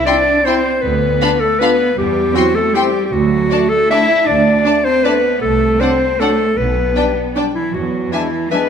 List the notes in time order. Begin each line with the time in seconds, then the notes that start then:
0.06 C4 D4 E4 D5 G5 C6
0.45 C4 E4 C5 G5 C6
0.82 D2 B3 B4
1.21 B3 D4 F4 F5 B5
1.40 A3 A4
1.59 B3 D4 F4 B4 F5 B5
1.97 E2 G3 G4
2.35 F#3 C4 E4 F#4 G5 C6
2.55 A3 A4
2.74 G3 C4 E4 G4 G5 C6
3.06 G4
3.12 D2 F#3 F#4
3.51 A3 D4 D5 A5
3.69 A3 A4
3.90 A3 D4 E4 D5 E5 A5
4.27 D2 D4 D5
4.65 A3 D4 D5 A5
4.85 C4 C5
5.04 A3 B3 D4 B4 D5 A5
5.42 C2 A3 A4
5.79 F#3 C4 D4 C5 D5 F#5
6.19 F#3 A3 D4 A4 D5 F#5
6.57 B1 B3 B4
6.96 G3 D4 D5 G5
7.35 G3 D4 D5 G5
7.55 E3 E4
7.73 E2 F#3 F#4
8.12 E3 G#3 D4 E4 E5 G#5
8.51 G#3 B3 D4 B4 E5 G#5